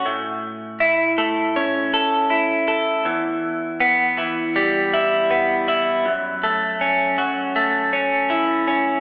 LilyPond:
\new Staff \with { instrumentName = "Clean electric guitar" } { \time 4/4 \key fis \phrygian \tempo 4 = 80 a,4 e'8 a8 cis'8 a'8 e'8 a'8 | e,4 b8 e8 g8 e'8 b8 e'8 | fis,8 a8 cis'8 fis8 a8 cis'8 e'8 cis'8 | }